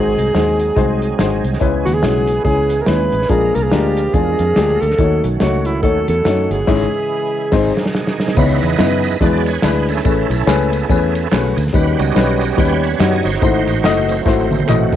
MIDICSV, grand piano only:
0, 0, Header, 1, 2, 480
1, 0, Start_track
1, 0, Key_signature, 4, "minor"
1, 0, Tempo, 421348
1, 1836, Time_signature, 4, 2, 24, 8
1, 17045, End_track
2, 0, Start_track
2, 0, Title_t, "Grand piano"
2, 0, Program_c, 0, 0
2, 0, Note_on_c, 0, 44, 60
2, 0, Note_on_c, 0, 56, 65
2, 0, Note_on_c, 0, 63, 58
2, 0, Note_on_c, 0, 66, 65
2, 0, Note_on_c, 0, 72, 74
2, 221, Note_off_c, 0, 56, 0
2, 224, Note_off_c, 0, 63, 0
2, 226, Note_off_c, 0, 66, 0
2, 229, Note_off_c, 0, 72, 0
2, 377, Note_on_c, 0, 56, 64
2, 387, Note_on_c, 0, 63, 59
2, 393, Note_on_c, 0, 66, 66
2, 401, Note_on_c, 0, 72, 75
2, 633, Note_off_c, 0, 44, 0
2, 695, Note_off_c, 0, 56, 0
2, 700, Note_off_c, 0, 63, 0
2, 704, Note_off_c, 0, 66, 0
2, 708, Note_off_c, 0, 72, 0
2, 862, Note_on_c, 0, 56, 79
2, 868, Note_on_c, 0, 63, 68
2, 878, Note_on_c, 0, 66, 71
2, 883, Note_on_c, 0, 72, 92
2, 1178, Note_off_c, 0, 56, 0
2, 1181, Note_off_c, 0, 63, 0
2, 1186, Note_off_c, 0, 66, 0
2, 1189, Note_off_c, 0, 72, 0
2, 1345, Note_on_c, 0, 56, 75
2, 1352, Note_on_c, 0, 63, 63
2, 1360, Note_on_c, 0, 66, 70
2, 1364, Note_on_c, 0, 72, 81
2, 1659, Note_off_c, 0, 56, 0
2, 1663, Note_off_c, 0, 63, 0
2, 1667, Note_off_c, 0, 66, 0
2, 1669, Note_off_c, 0, 72, 0
2, 1822, Note_on_c, 0, 56, 80
2, 1828, Note_on_c, 0, 61, 68
2, 1829, Note_on_c, 0, 49, 67
2, 1833, Note_on_c, 0, 64, 69
2, 1839, Note_on_c, 0, 71, 91
2, 2138, Note_off_c, 0, 56, 0
2, 2141, Note_off_c, 0, 61, 0
2, 2144, Note_off_c, 0, 64, 0
2, 2146, Note_off_c, 0, 71, 0
2, 2297, Note_on_c, 0, 56, 72
2, 2301, Note_on_c, 0, 61, 66
2, 2309, Note_on_c, 0, 64, 64
2, 2315, Note_on_c, 0, 66, 71
2, 2551, Note_off_c, 0, 49, 0
2, 2615, Note_off_c, 0, 56, 0
2, 2618, Note_off_c, 0, 61, 0
2, 2622, Note_off_c, 0, 64, 0
2, 2624, Note_off_c, 0, 66, 0
2, 2781, Note_on_c, 0, 56, 62
2, 2787, Note_on_c, 0, 61, 63
2, 2793, Note_on_c, 0, 64, 58
2, 2800, Note_on_c, 0, 68, 66
2, 3098, Note_off_c, 0, 56, 0
2, 3101, Note_off_c, 0, 61, 0
2, 3104, Note_off_c, 0, 64, 0
2, 3108, Note_off_c, 0, 68, 0
2, 3266, Note_on_c, 0, 56, 66
2, 3274, Note_on_c, 0, 61, 59
2, 3282, Note_on_c, 0, 64, 59
2, 3290, Note_on_c, 0, 71, 68
2, 3582, Note_off_c, 0, 56, 0
2, 3585, Note_off_c, 0, 61, 0
2, 3589, Note_off_c, 0, 64, 0
2, 3593, Note_off_c, 0, 71, 0
2, 3745, Note_on_c, 0, 56, 64
2, 3749, Note_on_c, 0, 62, 58
2, 3751, Note_on_c, 0, 46, 57
2, 3756, Note_on_c, 0, 65, 59
2, 3765, Note_on_c, 0, 70, 75
2, 4061, Note_off_c, 0, 56, 0
2, 4063, Note_off_c, 0, 62, 0
2, 4067, Note_off_c, 0, 65, 0
2, 4072, Note_off_c, 0, 70, 0
2, 4230, Note_on_c, 0, 56, 67
2, 4232, Note_on_c, 0, 62, 63
2, 4242, Note_on_c, 0, 65, 63
2, 4246, Note_on_c, 0, 70, 78
2, 4476, Note_off_c, 0, 46, 0
2, 4545, Note_off_c, 0, 56, 0
2, 4546, Note_off_c, 0, 62, 0
2, 4551, Note_off_c, 0, 65, 0
2, 4553, Note_off_c, 0, 70, 0
2, 4712, Note_on_c, 0, 56, 65
2, 4719, Note_on_c, 0, 62, 58
2, 4726, Note_on_c, 0, 65, 61
2, 4732, Note_on_c, 0, 68, 71
2, 5027, Note_off_c, 0, 56, 0
2, 5030, Note_off_c, 0, 62, 0
2, 5034, Note_off_c, 0, 65, 0
2, 5037, Note_off_c, 0, 68, 0
2, 5197, Note_on_c, 0, 56, 63
2, 5204, Note_on_c, 0, 62, 58
2, 5211, Note_on_c, 0, 65, 59
2, 5216, Note_on_c, 0, 67, 76
2, 5510, Note_off_c, 0, 56, 0
2, 5514, Note_off_c, 0, 62, 0
2, 5517, Note_off_c, 0, 65, 0
2, 5520, Note_off_c, 0, 67, 0
2, 5678, Note_on_c, 0, 57, 64
2, 5684, Note_on_c, 0, 63, 61
2, 5692, Note_on_c, 0, 51, 57
2, 5696, Note_on_c, 0, 66, 62
2, 5700, Note_on_c, 0, 73, 73
2, 5992, Note_off_c, 0, 57, 0
2, 5995, Note_off_c, 0, 63, 0
2, 6001, Note_off_c, 0, 66, 0
2, 6003, Note_off_c, 0, 73, 0
2, 6161, Note_on_c, 0, 57, 70
2, 6166, Note_on_c, 0, 63, 66
2, 6175, Note_on_c, 0, 66, 62
2, 6180, Note_on_c, 0, 73, 75
2, 6410, Note_off_c, 0, 51, 0
2, 6475, Note_off_c, 0, 57, 0
2, 6477, Note_off_c, 0, 63, 0
2, 6482, Note_off_c, 0, 66, 0
2, 6484, Note_off_c, 0, 73, 0
2, 6641, Note_on_c, 0, 57, 66
2, 6645, Note_on_c, 0, 63, 64
2, 6654, Note_on_c, 0, 66, 64
2, 6660, Note_on_c, 0, 73, 75
2, 6956, Note_off_c, 0, 57, 0
2, 6958, Note_off_c, 0, 63, 0
2, 6962, Note_off_c, 0, 66, 0
2, 6965, Note_off_c, 0, 73, 0
2, 7123, Note_on_c, 0, 57, 65
2, 7132, Note_on_c, 0, 63, 62
2, 7138, Note_on_c, 0, 66, 62
2, 7142, Note_on_c, 0, 73, 73
2, 7438, Note_off_c, 0, 57, 0
2, 7442, Note_off_c, 0, 63, 0
2, 7445, Note_off_c, 0, 66, 0
2, 7448, Note_off_c, 0, 73, 0
2, 7601, Note_on_c, 0, 56, 93
2, 7603, Note_on_c, 0, 61, 88
2, 7609, Note_on_c, 0, 44, 93
2, 7611, Note_on_c, 0, 64, 93
2, 7615, Note_on_c, 0, 73, 93
2, 7800, Note_off_c, 0, 56, 0
2, 7802, Note_off_c, 0, 61, 0
2, 7805, Note_off_c, 0, 44, 0
2, 7806, Note_off_c, 0, 64, 0
2, 7809, Note_off_c, 0, 73, 0
2, 8560, Note_on_c, 0, 56, 90
2, 8566, Note_on_c, 0, 60, 85
2, 8571, Note_on_c, 0, 44, 85
2, 8574, Note_on_c, 0, 63, 88
2, 8577, Note_on_c, 0, 72, 89
2, 8761, Note_off_c, 0, 56, 0
2, 8765, Note_off_c, 0, 60, 0
2, 8768, Note_off_c, 0, 44, 0
2, 8769, Note_off_c, 0, 63, 0
2, 8771, Note_off_c, 0, 72, 0
2, 9528, Note_on_c, 0, 59, 71
2, 9533, Note_on_c, 0, 63, 66
2, 9539, Note_on_c, 0, 49, 67
2, 9543, Note_on_c, 0, 64, 61
2, 9549, Note_on_c, 0, 73, 78
2, 9843, Note_off_c, 0, 59, 0
2, 9845, Note_off_c, 0, 63, 0
2, 9850, Note_off_c, 0, 64, 0
2, 9853, Note_off_c, 0, 73, 0
2, 10007, Note_on_c, 0, 59, 79
2, 10014, Note_on_c, 0, 63, 67
2, 10018, Note_on_c, 0, 64, 67
2, 10027, Note_on_c, 0, 71, 77
2, 10258, Note_off_c, 0, 49, 0
2, 10322, Note_off_c, 0, 59, 0
2, 10326, Note_off_c, 0, 63, 0
2, 10328, Note_off_c, 0, 64, 0
2, 10332, Note_off_c, 0, 71, 0
2, 10485, Note_on_c, 0, 56, 72
2, 10492, Note_on_c, 0, 62, 64
2, 10495, Note_on_c, 0, 52, 64
2, 10501, Note_on_c, 0, 64, 66
2, 10508, Note_on_c, 0, 71, 81
2, 10801, Note_off_c, 0, 56, 0
2, 10804, Note_off_c, 0, 62, 0
2, 10809, Note_off_c, 0, 64, 0
2, 10812, Note_off_c, 0, 71, 0
2, 10964, Note_on_c, 0, 56, 65
2, 10969, Note_on_c, 0, 62, 68
2, 10976, Note_on_c, 0, 64, 63
2, 10986, Note_on_c, 0, 71, 81
2, 11215, Note_off_c, 0, 52, 0
2, 11280, Note_off_c, 0, 56, 0
2, 11282, Note_off_c, 0, 62, 0
2, 11285, Note_off_c, 0, 64, 0
2, 11291, Note_off_c, 0, 71, 0
2, 11445, Note_on_c, 0, 57, 75
2, 11451, Note_on_c, 0, 61, 65
2, 11456, Note_on_c, 0, 45, 60
2, 11456, Note_on_c, 0, 68, 62
2, 11461, Note_on_c, 0, 71, 81
2, 11760, Note_off_c, 0, 57, 0
2, 11762, Note_off_c, 0, 61, 0
2, 11765, Note_off_c, 0, 68, 0
2, 11768, Note_off_c, 0, 71, 0
2, 11920, Note_on_c, 0, 57, 82
2, 11925, Note_on_c, 0, 61, 86
2, 11929, Note_on_c, 0, 68, 84
2, 11936, Note_on_c, 0, 71, 101
2, 12174, Note_off_c, 0, 45, 0
2, 12237, Note_off_c, 0, 57, 0
2, 12239, Note_off_c, 0, 61, 0
2, 12241, Note_off_c, 0, 68, 0
2, 12245, Note_off_c, 0, 71, 0
2, 12404, Note_on_c, 0, 57, 82
2, 12413, Note_on_c, 0, 61, 78
2, 12420, Note_on_c, 0, 68, 78
2, 12426, Note_on_c, 0, 71, 97
2, 12718, Note_off_c, 0, 57, 0
2, 12722, Note_off_c, 0, 61, 0
2, 12726, Note_off_c, 0, 68, 0
2, 12729, Note_off_c, 0, 71, 0
2, 12887, Note_on_c, 0, 57, 72
2, 12890, Note_on_c, 0, 61, 67
2, 12898, Note_on_c, 0, 68, 62
2, 12905, Note_on_c, 0, 71, 79
2, 13199, Note_off_c, 0, 57, 0
2, 13200, Note_off_c, 0, 61, 0
2, 13204, Note_off_c, 0, 68, 0
2, 13207, Note_off_c, 0, 71, 0
2, 13360, Note_on_c, 0, 55, 67
2, 13369, Note_on_c, 0, 61, 71
2, 13371, Note_on_c, 0, 51, 62
2, 13373, Note_on_c, 0, 63, 66
2, 13376, Note_on_c, 0, 71, 76
2, 13674, Note_off_c, 0, 55, 0
2, 13679, Note_off_c, 0, 61, 0
2, 13681, Note_off_c, 0, 63, 0
2, 13683, Note_off_c, 0, 71, 0
2, 13838, Note_on_c, 0, 55, 75
2, 13843, Note_on_c, 0, 61, 70
2, 13850, Note_on_c, 0, 63, 64
2, 13857, Note_on_c, 0, 71, 87
2, 14088, Note_off_c, 0, 51, 0
2, 14153, Note_off_c, 0, 55, 0
2, 14155, Note_off_c, 0, 61, 0
2, 14159, Note_off_c, 0, 63, 0
2, 14162, Note_off_c, 0, 71, 0
2, 14318, Note_on_c, 0, 55, 78
2, 14321, Note_on_c, 0, 61, 69
2, 14330, Note_on_c, 0, 63, 68
2, 14335, Note_on_c, 0, 71, 84
2, 14632, Note_off_c, 0, 55, 0
2, 14634, Note_off_c, 0, 61, 0
2, 14638, Note_off_c, 0, 63, 0
2, 14641, Note_off_c, 0, 71, 0
2, 14792, Note_on_c, 0, 55, 69
2, 14801, Note_on_c, 0, 61, 59
2, 14806, Note_on_c, 0, 63, 66
2, 14811, Note_on_c, 0, 66, 81
2, 15108, Note_off_c, 0, 55, 0
2, 15113, Note_off_c, 0, 61, 0
2, 15115, Note_off_c, 0, 63, 0
2, 15118, Note_off_c, 0, 66, 0
2, 15279, Note_on_c, 0, 57, 68
2, 15289, Note_on_c, 0, 64, 65
2, 15290, Note_on_c, 0, 44, 62
2, 15295, Note_on_c, 0, 66, 69
2, 15299, Note_on_c, 0, 72, 79
2, 15591, Note_off_c, 0, 57, 0
2, 15596, Note_off_c, 0, 64, 0
2, 15599, Note_off_c, 0, 66, 0
2, 15601, Note_off_c, 0, 72, 0
2, 15766, Note_on_c, 0, 57, 93
2, 15770, Note_on_c, 0, 64, 84
2, 15776, Note_on_c, 0, 66, 87
2, 15779, Note_on_c, 0, 75, 105
2, 16005, Note_off_c, 0, 44, 0
2, 16074, Note_off_c, 0, 57, 0
2, 16076, Note_off_c, 0, 64, 0
2, 16079, Note_off_c, 0, 66, 0
2, 16080, Note_off_c, 0, 75, 0
2, 16239, Note_on_c, 0, 57, 88
2, 16250, Note_on_c, 0, 64, 82
2, 16256, Note_on_c, 0, 66, 78
2, 16261, Note_on_c, 0, 72, 87
2, 16550, Note_off_c, 0, 57, 0
2, 16555, Note_off_c, 0, 64, 0
2, 16559, Note_off_c, 0, 66, 0
2, 16561, Note_off_c, 0, 72, 0
2, 16716, Note_on_c, 0, 57, 72
2, 16721, Note_on_c, 0, 64, 60
2, 16729, Note_on_c, 0, 66, 65
2, 16735, Note_on_c, 0, 75, 83
2, 17028, Note_off_c, 0, 57, 0
2, 17030, Note_off_c, 0, 64, 0
2, 17034, Note_off_c, 0, 66, 0
2, 17037, Note_off_c, 0, 75, 0
2, 17045, End_track
0, 0, End_of_file